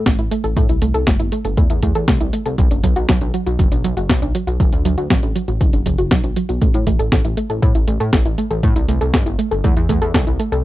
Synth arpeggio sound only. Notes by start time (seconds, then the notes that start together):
0.06 A3
0.19 E4
0.31 A3
0.44 A4
0.56 A3
0.69 E4
0.82 A3
0.94 A4
1.07 A3
1.19 E4
1.32 A3
1.45 A4
1.57 A3
1.70 E4
1.83 A3
1.95 A4
2.08 A3
2.20 E4
2.33 A3
2.46 A4
2.58 F#3
2.71 D4
2.83 F#3
2.96 F#4
3.09 F#3
3.21 D4
3.34 F#3
3.46 F#4
3.59 F#3
3.72 D4
3.84 F#3
3.97 F#4
4.09 F#3
4.22 D4
4.35 F#3
4.47 F#4
4.60 F#3
4.72 D4
4.85 F#3
4.98 F#4
5.10 F#3
5.23 D4
5.35 F#3
5.48 F#4
5.61 F#3
5.73 D4
5.86 F#3
5.98 F#4
6.11 F#3
6.24 D4
6.36 F#3
6.49 F#4
6.61 A3
6.74 E4
6.87 A3
6.99 A4
7.12 A4
7.25 E4
7.37 A3
7.50 A4
7.62 A3
7.75 E4
7.87 A3
8.00 A4
8.13 A4
8.25 E4
8.38 A3
8.51 A4
8.63 A3
8.76 E4
8.88 A3
9.01 A4
9.13 A4
9.26 E4
9.39 A3
9.51 A4
9.64 A3
9.76 E4
9.89 A3
10.02 A4
10.14 A4
10.27 E4
10.39 A3
10.52 A4